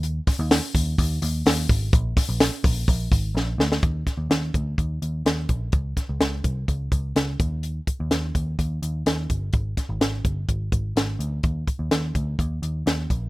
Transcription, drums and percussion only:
0.03 hi-hat pedal medium
0.03 open hi-hat medium
0.27 kick medium
0.27 snare soft
0.27 hi-hat pedal medium
0.27 open hi-hat medium
0.51 snare loud
0.51 hi-hat pedal medium
0.51 open hi-hat loud
0.75 kick medium
0.75 hi-hat pedal medium
0.75 open hi-hat medium
0.98 kick medium
0.98 hi-hat pedal medium
0.98 open hi-hat medium
1.22 hi-hat pedal medium
1.22 open hi-hat medium
1.46 snare loud
1.46 hi-hat pedal medium
1.46 open hi-hat medium
1.69 kick medium
1.69 hi-hat pedal medium
1.69 open hi-hat medium
1.93 kick loud
1.93 hi-hat pedal medium
1.93 open hi-hat medium
2.17 kick medium
2.17 snare soft
2.17 hi-hat pedal medium
2.17 open hi-hat medium
2.40 snare loud
2.40 hi-hat pedal medium
2.40 open hi-hat medium
2.64 kick medium
2.64 hi-hat pedal medium
2.64 open hi-hat medium
2.88 kick medium
2.88 hi-hat pedal medium
2.88 open hi-hat medium
3.12 kick medium
3.12 hi-hat pedal medium
3.12 open hi-hat medium
3.37 snare medium
3.60 snare medium
3.72 snare medium
3.83 kick loud
3.83 closed hi-hat medium
4.07 kick medium
4.07 snare soft
4.07 closed hi-hat medium
4.31 snare loud
4.31 closed hi-hat medium
4.54 kick medium
4.54 closed hi-hat medium
4.78 kick medium
4.78 closed hi-hat medium
5.02 closed hi-hat medium
5.26 snare loud
5.26 closed hi-hat medium
5.49 kick medium
5.49 closed hi-hat medium
5.72 kick medium
5.72 closed hi-hat medium
5.97 kick medium
5.97 snare soft
5.97 closed hi-hat medium
6.21 snare loud
6.21 closed hi-hat medium
6.44 kick medium
6.44 closed hi-hat medium
6.68 kick medium
6.68 closed hi-hat medium
6.92 kick medium
6.92 closed hi-hat medium
7.16 snare loud
7.16 closed hi-hat medium
7.40 kick medium
7.40 closed hi-hat medium
7.63 closed hi-hat medium
7.87 kick medium
7.87 closed hi-hat medium
8.11 snare medium
8.11 closed hi-hat medium
8.35 kick medium
8.35 closed hi-hat medium
8.59 kick medium
8.59 closed hi-hat medium
8.83 closed hi-hat medium
9.06 snare loud
9.06 closed hi-hat medium
9.30 kick medium
9.30 closed hi-hat medium
9.53 kick medium
9.53 closed hi-hat medium
9.77 kick medium
9.77 snare soft
9.77 closed hi-hat medium
10.01 snare loud
10.01 closed hi-hat medium
10.25 kick medium
10.25 closed hi-hat medium
10.49 kick medium
10.49 closed hi-hat medium
10.72 kick medium
10.72 closed hi-hat medium
10.97 snare loud
10.97 closed hi-hat medium
11.21 closed hi-hat medium
11.43 kick medium
11.43 closed hi-hat medium
11.68 kick medium
11.68 closed hi-hat medium
11.91 snare loud
11.91 closed hi-hat medium
12.15 kick medium
12.15 closed hi-hat medium
12.39 kick medium
12.39 closed hi-hat medium
12.63 closed hi-hat medium
12.87 snare loud
12.87 closed hi-hat medium
13.10 kick medium
13.10 closed hi-hat medium

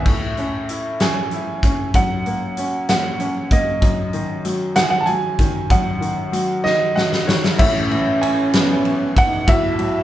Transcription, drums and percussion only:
0.06 kick medium
0.06 crash medium
0.37 closed hi-hat soft
0.69 closed hi-hat medium
1.00 snare medium
1.00 closed hi-hat medium
1.31 closed hi-hat soft
1.63 kick medium
1.63 closed hi-hat medium
1.94 kick medium
1.94 closed hi-hat medium
2.26 closed hi-hat soft
2.57 closed hi-hat medium
2.89 snare medium
2.89 closed hi-hat medium
3.20 closed hi-hat soft
3.51 kick medium
3.51 closed hi-hat medium
3.82 kick medium
3.82 closed hi-hat medium
4.13 closed hi-hat soft
4.45 closed hi-hat medium
4.76 snare loud
4.76 closed hi-hat medium
5.07 closed hi-hat soft
5.39 kick medium
5.39 closed hi-hat medium
5.70 kick medium
5.70 closed hi-hat medium
6.02 closed hi-hat soft
6.33 closed hi-hat medium
6.65 snare soft
6.97 snare medium
7.13 snare medium
7.29 snare medium
7.44 snare medium
7.59 kick loud
7.59 crash medium
7.91 ride soft
8.23 ride medium
8.53 snare loud
8.53 ride medium
8.85 ride soft
9.17 kick medium
9.17 ride medium
9.48 kick loud
9.48 ride medium
9.79 ride soft

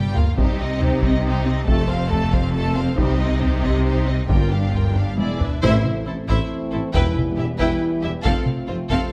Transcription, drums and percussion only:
0.17 taiko low medium
0.38 taiko medium
0.81 taiko low medium
1.02 taiko medium
1.68 taiko medium
2.11 taiko low medium
2.33 taiko medium
2.98 taiko loud
3.42 taiko low medium
3.64 taiko medium
4.29 taiko medium
4.74 taiko low medium
4.96 taiko low-mid medium
5.18 taiko high medium
5.41 taiko low medium
5.64 taiko medium
5.85 taiko mid medium
6.29 taiko medium
6.94 taiko medium
7.17 taiko mid medium
7.60 taiko medium
8.25 taiko medium
8.46 taiko mid medium
8.90 taiko medium

